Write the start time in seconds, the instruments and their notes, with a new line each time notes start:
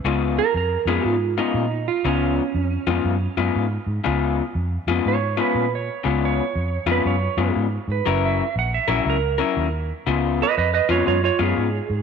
0.04 fingered electric bass C#2, clean electric guitar C#3 G#3 B3 F4
0.39 electric slide guitar A#4
0.54 fingered electric bass F2, electric slide guitar A#4
0.85 fingered electric bass F2, clean electric guitar C#3 G#3 B3 F4, electric slide guitar G#4
1.04 fingered electric bass G#2, electric slide guitar F4
1.38 clean electric guitar C#3 G#3 B3 F4, electric slide guitar D#4
1.54 fingered electric bass A#2
1.88 electric slide guitar F4
2.05 fingered electric bass C#2, clean electric guitar C#3 G#3 B3 F4, electric slide guitar C#4
2.54 fingered electric bass F2
2.87 fingered electric bass F2, clean electric guitar C#3 G#3 B3 F4
3.05 fingered electric bass F#2
3.37 fingered electric bass F#2, clean electric guitar C#3 G#3 B3 F4
3.56 fingered electric bass G#2
3.87 fingered electric bass G#2
4.04 fingered electric bass C#2, clean electric guitar C#3 G#3 B3 F4
4.55 fingered electric bass F2
4.87 fingered electric bass F2, clean electric guitar C#3 G#3 B3 F4
5.05 fingered electric bass G#2, electric slide guitar C#5
5.37 clean electric guitar C#3 G#3 B3 F4, electric slide guitar B4
5.55 fingered electric bass A#2
5.75 electric slide guitar C#5
6.04 fingered electric bass C#2, clean electric guitar C#3 G#3 B3 F4
6.25 electric slide guitar C#5
6.55 fingered electric bass F2
6.86 fingered electric bass F2, clean electric guitar C#3 G#3 B3 F4
6.92 electric slide guitar B4
7.05 fingered electric bass F#2, electric slide guitar C#5
7.37 fingered electric bass F#2, clean electric guitar C#3 G#3 B3 F4
7.56 fingered electric bass G#2
7.88 fingered electric bass G#2, electric slide guitar B4
8.06 fingered electric bass F#1, clean electric guitar F#3 C#4 E4 A#4
8.25 electric slide guitar E5
8.56 fingered electric bass A#1, electric slide guitar F#5
8.74 electric slide guitar E5
8.88 fingered electric bass A#1, clean electric guitar F#3 C#4 E4 A#4
9.06 fingered electric bass C#2
9.10 electric slide guitar A#4
9.38 clean electric guitar F#3 C#4 E4 A#4
9.57 fingered electric bass D#2
10.06 fingered electric bass C#2, clean electric guitar C#3 G#3 B3 F4
10.42 electric slide guitar B4 D#5
10.58 fingered electric bass F2, electric slide guitar B4 D#5
10.74 electric slide guitar B4 D#5
10.89 fingered electric bass F2, clean electric guitar C#3 G#3 B3 F4, electric slide guitar F4 C#5
11.07 fingered electric bass F#2, electric slide guitar F4 C#5
11.24 electric slide guitar F4 C#5
11.39 fingered electric bass F#2, clean electric guitar C#3 G#3 B3 F4, electric slide guitar G#4
11.57 fingered electric bass G#2
11.90 fingered electric bass G#2